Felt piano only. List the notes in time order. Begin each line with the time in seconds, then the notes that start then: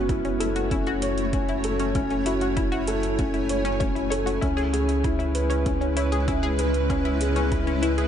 Already playing: C#4 F#4
0.09 E4
0.40 A4
0.71 C#4
1.02 C#5
1.33 C#4
1.64 A4
1.95 C#4
2.26 F#4
2.57 E4
2.88 A4
3.19 C#4
3.49 C#5
3.81 C#4
4.11 A4
4.42 C#4
4.73 G#4
5.04 E4
5.35 B4
5.66 C#4
5.96 C#5
6.28 C#4
6.59 B4
6.90 C#4
7.21 G#4
7.52 E4
7.82 B4